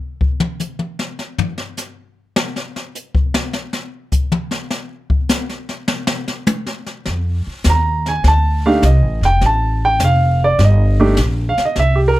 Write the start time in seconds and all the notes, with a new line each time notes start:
0.21 kick
0.40 mid tom
0.60 hi-hat pedal, mid tom
0.79 mid tom
0.99 snare
1.19 snare
1.38 floor tom
1.58 snare
1.77 snare, hi-hat pedal
2.36 snare
2.56 snare
2.76 snare
2.95 hi-hat pedal
3.15 kick
3.34 snare
3.53 snare
3.73 snare
4.12 kick, hi-hat pedal
4.32 mid tom
4.51 snare
4.70 snare
5.10 kick
5.29 snare, hi-hat pedal
5.49 snare
5.69 snare
5.88 snare
6.07 snare
6.28 snare
6.47 hi-hat pedal, high tom
6.66 snare
6.86 snare
7.06 F2, brush sweep, snare
7.47 muted upright bass stroke
7.64 D#2, snare, hi-hat pedal
7.70 A#5
8.06 G#5, snare
8.24 D2, brush sweep, snare
8.28 A5
8.66 A3 D4 D#4 G4 F5
8.82 C2 D#5, snare, hi-hat pedal
9.02 A1
9.21 F1, snare
9.25 G5
9.41 A1, brush sweep, snare
9.46 A5
9.85 G5
9.99 F1, snare, hi-hat pedal
10.04 F5
10.44 D5
10.59 G1, brush sweep, snare
10.64 D#5
11.00 A3 D4 D#4 G4
11.17 A#1, snare, hi-hat pedal
11.49 F5
11.58 muted upright bass stroke, snare
11.65 D#5
11.76 C2 E5, brush sweep, snare
11.96 G4
12.08 A#4